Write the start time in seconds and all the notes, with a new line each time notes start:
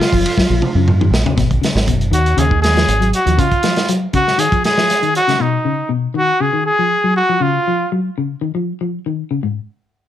Already playing: F4
0.01 snare
0.13 F#1 F3, kick, open hi-hat
0.26 ride bell
0.37 F#3, muted fingered electric bass stroke, kick, snare
0.50 A#1 F3
0.62 mid tom
0.75 F#2 C#3
0.88 mid tom
1.01 D#3, mid tom
1.10 A#1, snare
1.25 C#3, floor tom
1.37 G#1 B2, kick, snare, closed hi-hat
1.51 kick, closed hi-hat
1.62 C#3, muted fingered electric bass stroke, snare, closed hi-hat
1.75 G#1, snare
1.87 F#1 B2, kick, closed hi-hat
2.01 closed hi-hat
2.11 D#2 D#3 F#4, closed hi-hat
2.26 closed hi-hat
2.37 D#2 C#3 G#4, closed hi-hat
2.50 D#3, kick
2.62 G#4, snare, closed hi-hat
2.75 F3, snare, closed hi-hat
2.88 G#1, closed hi-hat
3.01 F#3, closed hi-hat
3.13 F#4, closed hi-hat
3.26 D#2 F3, closed hi-hat
3.38 C#3 F4, kick, closed hi-hat
3.51 kick, closed hi-hat
3.63 F3, snare, closed hi-hat
3.76 snare, closed hi-hat
3.88 F#3, closed hi-hat
4.13 C#3 F#4, kick, closed hi-hat
4.28 snare
4.38 D#3 G#4, closed hi-hat
4.52 F3, kick, closed hi-hat
4.64 G#4, snare, closed hi-hat
4.77 F3, snare
4.90 snare, closed hi-hat
5.03 D#3, closed hi-hat
5.15 F#4, closed hi-hat
5.28 C#3, snare, closed hi-hat
5.40 B2 D#4
5.65 C#3
5.89 B2
6.14 D#3 F#4
6.40 C#3 G#4
6.53 D#3
6.66 G#4
6.79 F3
7.04 F#3
7.17 F#4
7.29 F3
7.40 C#3 F4
7.68 F3
7.92 F#3
8.18 C#3
8.41 D#3
8.55 F3
8.81 F3
9.06 D#3
9.31 C#3
9.43 G#2